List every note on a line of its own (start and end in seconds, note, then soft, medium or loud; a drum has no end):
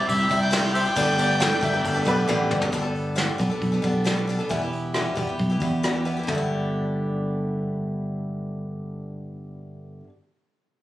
0.00 0.94 G3 medium
0.00 0.20 C4 soft
0.00 0.95 C4 medium
0.00 0.19 E4 medium
0.00 0.95 E4 medium
0.00 0.17 G4 medium
0.00 0.10 D5 medium
0.09 0.27 C2 loud
0.09 0.38 E5 loud
0.09 kick medium
0.09 ride medium
0.18 0.28 C4 soft
0.18 0.30 E4 soft
0.18 0.30 G4 medium
0.29 0.86 C2 medium
0.29 0.50 G3 medium
0.29 0.51 C4 medium
0.29 0.77 E4 medium
0.29 0.51 E4 medium
0.29 0.78 G4 medium
0.29 0.52 G4 medium
0.29 0.78 C5 medium
0.29 0.78 E5 medium
0.29 kick medium
0.29 ride medium
0.41 0.72 G5 loud
0.51 0.85 C3 medium
0.51 0.85 G3 medium
0.51 0.85 C4 medium
0.51 0.85 E4 medium
0.51 0.84 G4 medium
0.51 snare loud
0.51 ride loud
0.74 0.83 C5 medium
0.74 0.81 E5 medium
0.74 2.47 G5 loud
0.74 ride medium
0.85 0.96 C4 medium
0.85 0.97 E4 medium
0.85 0.96 G4 medium
0.95 1.52 G1 medium
0.95 1.18 G2 medium
0.95 1.18 D3 medium
0.95 1.16 G3 medium
0.95 2.71 A3 medium
0.95 2.71 B3 medium
0.95 1.17 B3 medium
0.95 1.18 D4 loud
0.95 2.71 G4 medium
0.95 1.12 G4 medium
0.95 1.12 A4 medium
0.95 1.19 A4 medium
0.95 1.12 B4 medium
0.95 1.12 D5 medium
0.95 kick loud
0.95 ride loud
1.17 1.40 G3 medium
1.17 1.40 B3 medium
1.17 1.41 D4 medium
1.17 1.81 G4 medium
1.17 1.81 A4 medium
1.17 1.41 A4 medium
1.17 1.81 B4 medium
1.17 1.81 D5 medium
1.17 ride medium
1.40 1.51 G2 medium
1.40 1.51 D3 medium
1.40 1.52 G3 medium
1.40 1.52 B3 medium
1.40 1.51 D4 medium
1.40 1.50 A4 medium
1.40 1.62 G5 medium
1.40 snare loud
1.40 ride loud
1.51 1.60 G3 medium
1.51 1.61 B3 medium
1.51 1.62 D4 medium
1.51 1.62 A4 medium
1.61 1.81 G1 medium
1.61 1.73 G3 medium
1.61 1.73 B3 medium
1.61 1.73 D4 medium
1.61 1.71 A4 medium
1.61 2.06 E5 medium
1.61 kick medium
1.61 ride medium
1.72 1.96 G3 medium
1.72 1.95 B3 medium
1.72 1.94 D4 medium
1.72 1.93 A4 medium
1.85 2.03 G1 loud
1.85 kick medium
1.85 ride medium
1.94 2.04 G3 medium
1.94 2.04 B3 medium
1.94 2.06 D4 medium
1.94 2.06 A4 medium
2.05 2.26 B1 medium
2.05 2.27 G3 medium
2.05 2.28 B3 medium
2.05 2.28 D4 medium
2.05 2.53 G4 medium
2.05 2.48 G4 medium
2.05 2.54 A4 medium
2.05 2.28 A4 medium
2.05 2.54 B4 medium
2.05 2.50 B4 medium
2.05 2.54 D5 medium
2.05 kick medium
2.05 ride medium
2.28 2.49 A1 medium
2.28 2.61 G2 medium
2.28 2.62 D3 loud
2.28 2.62 G3 loud
2.28 2.62 B3 loud
2.28 2.61 D4 loud
2.28 2.60 A4 loud
2.28 high tom medium
2.51 2.71 G1 medium
2.51 mid tom medium
2.61 2.72 G3 medium
2.61 2.72 B3 medium
2.61 2.73 D4 medium
2.61 2.73 A4 medium
2.61 floor tom loud
2.72 3.28 G1 medium
2.72 2.84 G2 medium
2.72 2.84 D3 medium
2.72 2.83 G3 medium
2.72 2.82 B3 medium
2.72 2.82 D4 loud
2.72 2.81 A4 loud
2.72 kick loud
2.72 open hi-hat medium
2.82 3.15 G3 soft
2.82 3.16 B3 soft
2.82 3.16 D4 medium
2.82 3.16 A4 medium
2.95 open hi-hat soft
3.16 3.39 G2 medium
3.16 3.39 D3 medium
3.16 3.37 G3 medium
3.16 3.38 B3 medium
3.16 3.39 D4 medium
3.16 3.40 A4 medium
3.16 snare loud
3.16 open hi-hat medium
3.38 3.49 B1 medium
3.38 3.50 G3 medium
3.38 3.50 B3 medium
3.38 3.50 D4 medium
3.38 3.48 A4 medium
3.38 kick medium
3.38 open hi-hat medium
3.50 3.73 G3 soft
3.50 3.72 B3 medium
3.50 3.72 D4 soft
3.50 3.71 A4 soft
3.62 3.80 B1 medium
3.62 kick medium
3.62 open hi-hat medium
3.72 3.81 G3 soft
3.72 3.82 B3 medium
3.72 3.83 D4 medium
3.72 3.83 A4 medium
3.82 4.39 B1 medium
3.82 4.04 G3 medium
3.82 4.05 B3 medium
3.82 4.05 D4 medium
3.82 4.05 A4 medium
3.82 kick medium
3.82 open hi-hat soft
4.04 4.16 G2 medium
4.04 4.17 D3 medium
4.04 4.17 G3 medium
4.04 4.16 B3 medium
4.04 4.15 D4 medium
4.04 4.14 A4 medium
4.04 snare loud
4.04 open hi-hat medium
4.16 4.26 G3 soft
4.16 4.28 B3 medium
4.16 4.28 D4 medium
4.16 4.27 A4 medium
4.27 4.39 G3 medium
4.27 4.39 B3 medium
4.27 4.39 D4 medium
4.27 4.38 A4 medium
4.27 open hi-hat soft
4.39 4.49 G3 soft
4.39 4.50 B3 medium
4.39 4.51 D4 medium
4.39 4.50 A4 medium
4.49 5.06 E1 loud
4.49 4.61 E3 medium
4.49 4.61 G3 medium
4.49 4.62 B3 medium
4.49 4.62 E4 medium
4.49 4.60 G4 medium
4.49 kick loud
4.49 open hi-hat medium
4.62 4.94 B3 soft
4.62 4.94 E4 medium
4.62 4.95 G4 medium
4.73 open hi-hat soft
4.94 5.17 E3 medium
4.94 5.14 G3 medium
4.94 5.16 B3 medium
4.94 5.16 E4 medium
4.94 5.17 G4 medium
4.94 cross-stick loud
4.94 open hi-hat medium
5.15 5.26 E1 medium
5.15 5.27 G3 medium
5.15 5.28 B3 medium
5.15 5.28 E4 medium
5.15 5.26 G4 medium
5.15 kick medium
5.15 open hi-hat soft
5.27 5.51 B3 soft
5.27 5.50 E4 soft
5.27 5.48 G4 medium
5.39 5.62 B1 medium
5.39 kick medium
5.39 open hi-hat medium
5.50 5.60 B3 soft
5.50 5.61 E4 medium
5.50 5.61 G4 medium
5.60 6.17 E2 medium
5.60 5.83 G3 medium
5.60 5.84 B3 medium
5.60 5.84 E4 medium
5.60 5.84 G4 medium
5.60 kick medium
5.60 open hi-hat soft
5.83 5.95 E3 medium
5.83 5.95 G3 medium
5.83 5.95 B3 medium
5.83 5.93 E4 medium
5.83 5.92 G4 medium
5.83 cross-stick loud
5.83 open hi-hat medium
5.93 6.04 B3 soft
5.93 6.05 E4 soft
5.93 6.05 G4 medium
6.05 6.17 G3 medium
6.05 6.17 B3 medium
6.05 6.17 E4 medium
6.05 6.15 G4 medium
6.05 open hi-hat soft
6.17 6.29 B3 soft
6.17 6.29 E4 medium
6.17 6.28 G4 medium
6.23 10.00 G2 medium
6.23 10.04 D3 medium
6.28 10.01 G1 medium
6.28 10.07 A3 medium
6.28 kick medium
6.28 floor tom medium
6.33 10.09 B3 medium
6.33 10.11 D4 medium
6.38 10.14 G4 medium